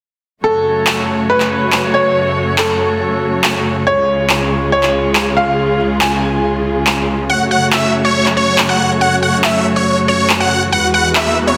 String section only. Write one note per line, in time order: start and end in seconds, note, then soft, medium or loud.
0.44 3.83 F#2 medium
0.44 10.68 C#3 medium
0.44 3.83 A3 medium
0.44 3.83 F#4 medium
0.44 3.83 C#5 medium
3.87 7.26 C#2 medium
3.87 7.26 G#3 medium
3.87 7.26 F4 medium
3.87 7.26 G#4 medium
7.30 10.69 F#2 medium
7.30 10.69 A3 medium
7.30 11.57 F#4 medium
7.30 10.69 C#5 medium
10.72 11.57 E2 medium
10.72 11.57 E3 medium
10.72 11.57 G#3 medium
10.72 11.57 B4 medium